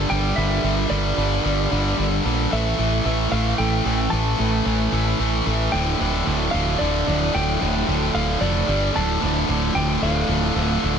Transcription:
Already playing: G3 D4 F4 A#4
0.10 G1 G2 D3 G3 G5
0.36 G1 G2 D3 G3 E5
0.63 G1 G2 D3 G3
0.90 G1 G2 D3 G3 D5
1.17 G1 G2 D3 G3
1.43 G1 G2 D3 G3
1.70 G1 G2 D3 G3
1.97 G1 G2 D3 G3
2.25 A#1 G2 D3 G3
2.50 A1 A2 E3 A3 C#4 A4 E5
2.78 A1 A2 E3 A3
3.05 A1 A2 E3 A3
3.31 A1 A2 E3 A3 F5
3.58 A1 A2 E3 A3 G5
3.85 A1 A2 E3 A3
4.10 A1 A2 E3 A3 A5
4.38 A1 A2 E3 A3
4.65 A1 A2 E3 A3
4.92 A1 A2 E3 A3
5.19 A1 A2 E3 A3
5.46 A1 A2 E3 A3
5.72 D1 D2 A2 D3 F3 D4 G5
6.00 D1 D2 A2 D3
6.25 D1 D2 A2 D3
6.51 D1 D2 A2 D3 F5
6.79 D1 D2 A2 D3 D5
7.06 D1 D2 A2 D3
7.33 D1 D2 A2 D3 G5
7.60 D1 D2 A2 D3
7.87 D1 D2 A2 D3
8.14 D1 D2 A2 D3 F5
8.40 F1 D2 A2 D3 D5
8.67 G1 G2 D3 G3 G4 D5
8.93 D1 D2 A2 D3 F3 A3 F4 A5
9.20 D1 D2 A2 D3
9.47 D1 D2 A2 D3
9.74 D1 D2 A2 D3 G5
10.01 D1 D2 A2 D3 F5
10.28 D1 D2 A2 D3
10.55 D1 D2 A2 D3
10.82 D1 D2 A2 D3

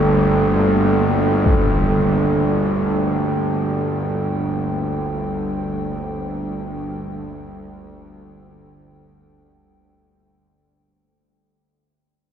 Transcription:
Already playing: G1 D2 G3 A#3 D4 A4 G5
1.46 impact

